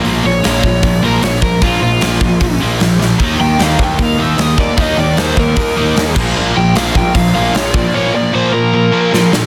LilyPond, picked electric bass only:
\new Staff \with { instrumentName = "Picked electric bass" } { \clef bass \time 4/4 \key ees \lydian \tempo 4 = 152 bes,,8 bes,,8 bes,,8 bes,,8 bes,,8 bes,,8 bes,,4 | bes,,8 bes,,8 bes,,8 bes,,8 bes,,8 bes,,8 bes,,4 | ees,8 ees,8 ees,8 ees,8 ees,8 ees,8 ees,4 | ees,8 ees,8 ees,8 ees,8 ees,8 ees,8 ees,8 bes,,8 |
bes,,8 bes,,8 bes,,8 bes,,8 bes,,8 bes,,8 bes,,4 | r1 | }